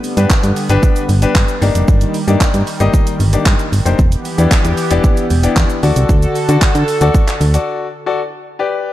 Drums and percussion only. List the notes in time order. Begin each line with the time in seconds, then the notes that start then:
0.04 open hi-hat, shaker
0.17 closed hi-hat, shaker
0.30 kick, clap, shaker
0.43 closed hi-hat, shaker
0.56 open hi-hat, shaker
0.69 closed hi-hat, shaker
0.83 kick, shaker
0.96 closed hi-hat, shaker
1.09 open hi-hat, shaker
1.22 closed hi-hat, shaker
1.35 kick, clap, shaker
1.48 closed hi-hat, shaker
1.62 open hi-hat, shaker
1.75 closed hi-hat, shaker
1.88 kick, shaker
2.01 closed hi-hat, shaker
2.14 open hi-hat, shaker
2.28 closed hi-hat, shaker
2.41 kick, clap, shaker
2.54 closed hi-hat, shaker
2.67 open hi-hat, shaker
2.80 closed hi-hat, shaker
2.94 kick, shaker
3.07 closed hi-hat, shaker
3.20 open hi-hat, shaker
3.33 closed hi-hat, shaker
3.46 kick, clap, shaker
3.59 closed hi-hat, shaker
3.73 open hi-hat, shaker
3.86 closed hi-hat, shaker
3.99 kick, shaker
4.12 closed hi-hat, shaker
4.25 open hi-hat, shaker
4.38 closed hi-hat, shaker
4.51 kick, clap, shaker
4.65 closed hi-hat, shaker
4.77 open hi-hat, shaker
4.91 closed hi-hat, shaker
5.04 kick, shaker
5.17 closed hi-hat, shaker
5.30 open hi-hat, shaker
5.43 closed hi-hat, shaker
5.56 kick, clap, shaker
5.70 closed hi-hat, shaker
5.83 open hi-hat, shaker
5.96 closed hi-hat, shaker
6.09 kick, shaker
6.22 closed hi-hat, shaker
6.35 open hi-hat, shaker
6.49 closed hi-hat, shaker
6.62 kick, clap, shaker
6.75 closed hi-hat, shaker
6.88 open hi-hat, shaker
7.01 closed hi-hat, shaker
7.14 kick, shaker
7.28 clap, closed hi-hat, shaker
7.41 open hi-hat, shaker
7.54 closed hi-hat, shaker